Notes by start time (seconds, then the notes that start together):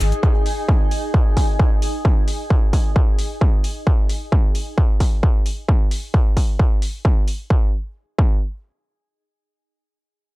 Already playing: D#4 G#4 D#5 G#5
0.00 G#1, open hi-hat, shaker
0.12 closed hi-hat, shaker
0.23 kick
0.46 open hi-hat
0.69 kick
0.91 open hi-hat
1.14 kick
1.37 kick, open hi-hat
1.59 kick
1.82 open hi-hat
2.05 kick
2.28 open hi-hat
2.50 kick
2.73 kick, open hi-hat
2.96 kick
3.19 open hi-hat
3.41 kick
3.64 open hi-hat
3.87 kick
4.09 open hi-hat
4.32 kick
4.55 open hi-hat
4.78 kick
5.00 kick, open hi-hat
5.23 kick
5.46 open hi-hat
5.69 kick
5.91 open hi-hat
6.14 kick
6.37 kick, open hi-hat
6.59 kick
6.82 open hi-hat
7.05 kick
7.28 open hi-hat
7.50 kick
8.19 kick